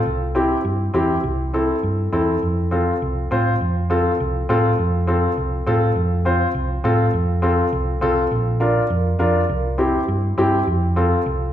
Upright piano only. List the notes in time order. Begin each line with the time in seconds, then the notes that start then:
0.35 C4 E4 G4
0.94 C4 E4 G4
1.54 C4 E4 A4
2.13 C4 E4 A4
2.71 C4 F4 A4
3.31 C4 F4 C5
3.90 C4 F4 A4
4.49 C4 F4 A4
5.07 C4 F4 A4
5.67 C4 F4 A4
6.25 C4 F4 C5
6.84 C4 F4 A4
7.42 C4 F4 A4
8.01 C4 F4 A4
8.60 D4 F4 A#4
9.19 D4 F4 A#4
9.78 C4 E4 G4
10.38 C4 E4 G4
10.96 C4 F4 A4